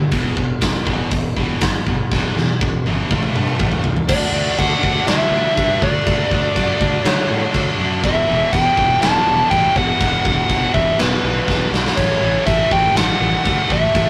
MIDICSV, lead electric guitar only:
0, 0, Header, 1, 2, 480
1, 0, Start_track
1, 0, Tempo, 493827
1, 114, Time_signature, 4, 2, 24, 8
1, 13702, End_track
2, 0, Start_track
2, 0, Title_t, "Lead electric guitar"
2, 0, Program_c, 0, 29
2, 3974, Note_on_c, 0, 74, 84
2, 4459, Note_on_c, 0, 78, 115
2, 4465, Note_off_c, 0, 74, 0
2, 4936, Note_off_c, 0, 78, 0
2, 4940, Note_on_c, 0, 76, 96
2, 5664, Note_on_c, 0, 74, 84
2, 5674, Note_off_c, 0, 76, 0
2, 6849, Note_off_c, 0, 74, 0
2, 6849, Note_on_c, 0, 73, 84
2, 7533, Note_off_c, 0, 73, 0
2, 7821, Note_on_c, 0, 76, 102
2, 8286, Note_on_c, 0, 79, 108
2, 8305, Note_off_c, 0, 76, 0
2, 8758, Note_off_c, 0, 79, 0
2, 8762, Note_on_c, 0, 81, 99
2, 9229, Note_off_c, 0, 81, 0
2, 9233, Note_on_c, 0, 79, 105
2, 9484, Note_off_c, 0, 79, 0
2, 9499, Note_on_c, 0, 78, 101
2, 10409, Note_off_c, 0, 78, 0
2, 10436, Note_on_c, 0, 76, 93
2, 10684, Note_off_c, 0, 76, 0
2, 10684, Note_on_c, 0, 71, 76
2, 11361, Note_off_c, 0, 71, 0
2, 11631, Note_on_c, 0, 73, 96
2, 12080, Note_off_c, 0, 73, 0
2, 12114, Note_on_c, 0, 76, 115
2, 12362, Note_off_c, 0, 76, 0
2, 12362, Note_on_c, 0, 79, 95
2, 12600, Note_off_c, 0, 79, 0
2, 12604, Note_on_c, 0, 78, 93
2, 13334, Note_on_c, 0, 76, 91
2, 13341, Note_off_c, 0, 78, 0
2, 13702, Note_off_c, 0, 76, 0
2, 13702, End_track
0, 0, End_of_file